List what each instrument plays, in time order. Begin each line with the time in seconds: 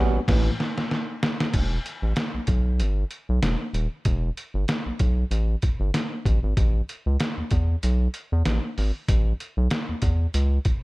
Already playing: analog synth bass A1, tine electric piano G3 B3 C#4 F#4
0.28 analog synth bass A1, tine electric piano A2 E3, kick, snare, crash
0.60 snare
0.78 snare
0.91 snare
1.23 snare
1.40 snare
1.53 analog synth bass E1, kick, closed hi-hat, crash
1.86 closed hi-hat
2.02 analog synth bass A1
2.16 snare, closed hi-hat
2.34 analog synth bass B1
2.47 analog synth bass B1, kick, closed hi-hat
2.80 analog synth bass G1, closed hi-hat
3.11 closed hi-hat
3.29 analog synth bass B1
3.42 analog synth bass E1, snare, closed hi-hat
3.74 analog synth bass D#1, closed hi-hat
4.05 analog synth bass E1, kick, closed hi-hat
4.37 closed hi-hat
4.54 analog synth bass G1
4.68 snare, closed hi-hat
4.86 analog synth bass B1
4.99 analog synth bass B1, kick, closed hi-hat
5.31 analog synth bass A1, closed hi-hat
5.62 kick, closed hi-hat
5.80 analog synth bass G1
5.94 snare, closed hi-hat
6.25 analog synth bass A1, kick, closed hi-hat
6.43 analog synth bass G#1
6.57 analog synth bass A1, kick, closed hi-hat
6.89 closed hi-hat
7.06 analog synth bass C#2
7.20 snare, closed hi-hat
7.37 analog synth bass E2
7.51 analog synth bass E2, kick, closed hi-hat
7.83 analog synth bass B1, closed hi-hat
8.14 closed hi-hat
8.32 analog synth bass E2
8.46 analog synth bass A1, snare, closed hi-hat
8.78 analog synth bass G#1, open hi-hat
9.08 analog synth bass A1, kick, closed hi-hat
9.40 closed hi-hat
9.57 analog synth bass B1
9.70 snare, closed hi-hat
9.89 analog synth bass E2
10.02 analog synth bass E2, kick, closed hi-hat
10.34 analog synth bass C#2, closed hi-hat
10.65 kick, closed hi-hat